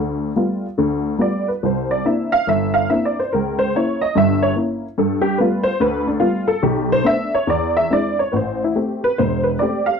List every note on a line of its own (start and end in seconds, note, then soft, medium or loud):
0.00 0.30 D2 medium
0.00 0.30 D3 medium
0.36 0.65 G3 soft
0.36 0.65 A3 soft
0.36 0.65 B3 soft
0.36 0.65 F4 medium
0.78 1.15 D2 medium
0.78 1.15 D3 medium
1.18 1.49 G3 soft
1.18 1.49 A3 soft
1.18 1.49 B3 soft
1.18 1.49 F4 soft
1.18 1.48 D5 medium
1.48 1.62 B4 medium
1.63 2.00 C2 medium
1.63 1.91 C5 medium
1.91 2.05 D5 medium
2.05 2.34 A#3 medium
2.05 2.34 C4 soft
2.05 2.35 D4 soft
2.05 2.35 E4 medium
2.05 2.32 E5 medium
2.32 2.47 F5 loud
2.47 2.84 G1 medium
2.47 2.75 E5 medium
2.74 2.89 F5 medium
2.90 3.19 A#3 medium
2.90 3.19 C4 soft
2.90 3.19 D4 soft
2.90 3.19 E4 soft
2.90 3.04 E5 medium
3.05 3.18 D5 medium
3.20 3.32 C5 medium
3.33 3.70 C#2 medium
3.33 3.59 A#4 medium
3.59 3.73 C5 medium
3.75 4.04 A#3 medium
3.75 4.04 C#4 medium
3.75 4.04 E4 medium
3.75 4.02 C#5 medium
4.01 4.15 D#5 medium
4.15 4.51 G1 medium
4.15 4.51 G2 medium
4.15 4.43 E5 loud
4.43 4.51 C#5 medium
4.55 4.84 A#3 soft
4.55 4.85 C#4 soft
4.55 4.85 E4 soft
4.98 5.33 G2 medium
4.98 5.24 A4 medium
5.22 5.37 G4 medium
5.38 5.68 G3 medium
5.38 5.68 A3 medium
5.38 5.69 B3 soft
5.38 5.69 F4 medium
5.38 5.65 B4 medium
5.63 5.79 C5 loud
5.80 6.16 D2 medium
5.80 6.07 B4 medium
6.07 6.21 D4 medium
6.20 6.50 G3 soft
6.20 6.50 A3 soft
6.20 6.50 B3 soft
6.20 6.47 F4 medium
6.48 6.62 A4 medium
6.63 6.99 B1 medium
6.63 6.90 G4 medium
6.92 7.06 C5 loud
7.04 7.34 A3 soft
7.04 7.34 B3 soft
7.04 7.35 D4 medium
7.04 7.33 E5 loud
7.35 7.48 C#5 medium
7.47 7.85 E2 medium
7.47 7.76 D5 medium
7.77 7.91 E5 medium
7.90 8.21 G#3 soft
7.90 8.20 C4 soft
7.90 8.21 D4 soft
7.90 8.21 E4 medium
7.90 8.19 D5 medium
8.19 8.33 C#5 medium
8.32 8.70 A1 medium
8.32 8.35 B4 medium
8.36 8.62 C5 medium
8.64 8.77 E4 medium
8.76 9.06 A3 medium
8.76 9.06 C4 soft
8.76 9.06 G4 medium
9.04 9.19 B4 medium
9.18 9.56 E1 medium
9.18 9.46 C5 medium
9.44 9.59 B4 medium
9.59 9.91 A3 soft
9.59 9.91 C4 soft
9.59 9.91 G4 medium
9.59 9.87 D5 medium
9.86 10.00 F5 medium